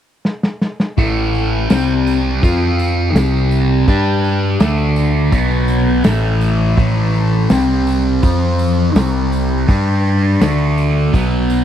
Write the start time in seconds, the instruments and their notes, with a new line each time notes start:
0.25 snare
0.43 snare
0.61 snare
0.80 snare
0.97 picked electric bass A1, distorted electric guitar A2 E3 A3, kick, open hi-hat
1.34 tambourine
1.70 picked electric bass C2, distorted electric guitar C3 G3 C4, snare, open hi-hat, tambourine
2.07 tambourine
2.43 picked electric bass F2, distorted electric guitar F3 C4 F4, kick, open hi-hat, tambourine
2.79 tambourine
3.15 picked electric bass C2, distorted electric guitar C3 G3 C4, snare, open hi-hat, tambourine
3.51 tambourine
3.87 picked electric bass G2, distorted electric guitar G3 D4 G4, kick, open hi-hat
4.25 tambourine
4.60 picked electric bass D2, distorted electric guitar D3 A3 D4, snare, open hi-hat, tambourine
4.96 tambourine
5.32 picked electric bass B1, distorted electric guitar B2 F#3 B3, kick, open hi-hat, tambourine
5.68 tambourine
6.04 picked electric bass A1, distorted electric guitar A2 E3 A3, snare, open hi-hat, tambourine
6.41 tambourine
6.77 picked electric bass A1, distorted electric guitar A2 E3 A3, kick, open hi-hat
7.14 tambourine
7.50 picked electric bass C2, distorted electric guitar C3 G3 C4, snare, open hi-hat, tambourine
7.87 tambourine
8.23 picked electric bass F2, distorted electric guitar F3 C4 F4, kick, open hi-hat, tambourine
8.59 tambourine
8.95 picked electric bass C2, distorted electric guitar C3 G3 C4, snare, open hi-hat, tambourine
9.32 tambourine
9.68 picked electric bass G2, distorted electric guitar G3 D4 G4, kick, open hi-hat, tambourine
10.41 picked electric bass D2, distorted electric guitar D3 A3 D4, snare, open hi-hat, tambourine
10.78 tambourine
11.13 picked electric bass B1, distorted electric guitar B2 F#3 B3, kick, open hi-hat, tambourine
11.50 tambourine